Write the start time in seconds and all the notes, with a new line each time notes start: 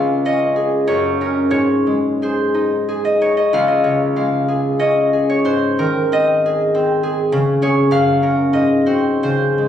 Already playing: C#2 G#3 G#4 F5
0.25 C#4 D#5
0.56 G#4
0.88 F#2 C#5
1.21 C#4 A#4
1.51 G#2 C#5
1.87 G#3
2.22 G#4 C5
2.54 D#4
2.89 G#4
3.05 D#5
3.21 D#4 C#5
3.37 D#5
3.53 C#2 F5
3.68 D#5
3.84 C#3 C#5
4.16 G#3 F5
4.48 G#4
4.79 C#4 D#5
5.13 G#4
5.30 C#5
5.45 G#2 C5
5.79 D#3 A#4
6.12 C4 D#5
6.46 G#4
6.75 C4
7.03 G#4
7.32 C#3
7.62 C#4 G#4 C#5
7.91 F#2 F5
8.22 C#4 A#4
8.53 G#2 D#5
8.86 C4 F#4 C5
9.23 C#3 C5
9.58 G#3